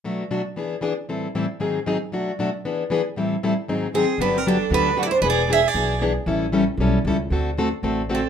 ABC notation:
X:1
M:4/4
L:1/8
Q:"Swing" 1/4=231
K:G
V:1 name="Steel-string acoustic guitar"
z8 | z8 | z8 | z6 _A2 |
B _B A2 =B2 (3d c B | d2 e d3 z2 | z8 | z6 A2 |]
V:2 name="Violin"
z8 | z8 | z8 | z6 C2 |
D C D2 D2 (3F E D | ^G2 G G3 z2 | z8 | z6 C2 |]
V:3 name="Steel-string acoustic guitar"
[B,,F,A,DF] z [B,,F,A,DF] z [E,B,D^G] z [E,B,DG] z | [A,,E,G,CEA] z [A,,E,G,CEA] z [_A,,_E,_G,C_E_A] z [A,,E,G,CEA] z | [B,,F,A,DF] z [B,,F,A,DF] z [E,B,D^G] z [E,B,DG] z | [A,,E,G,CEA] z [A,,E,G,CEA] z [_A,,_E,_G,C_E_A] z [A,,E,G,CEA] z |
[D,F,B,DG] z [D,F,B,DG] z [D,F,B,DG] z [D,F,B,DG] z | [E,B,D^G] z [E,B,DG] z [E,B,DG] z [E,B,DG] z | [E,G,^CEA] z [E,G,CEA] z [E,G,CEA] z [E,G,CEA] z | [D,A,CFA] z [D,A,CFA] z [D,A,CFA] z [D,A,CFA] z |]
V:4 name="Upright bass" clef=bass
z8 | z8 | z8 | z8 |
G,,,4 D,,4 | E,,,4 B,,,4 | A,,,4 B,,,2 ^C,,2 | D,,4 A,,,4 |]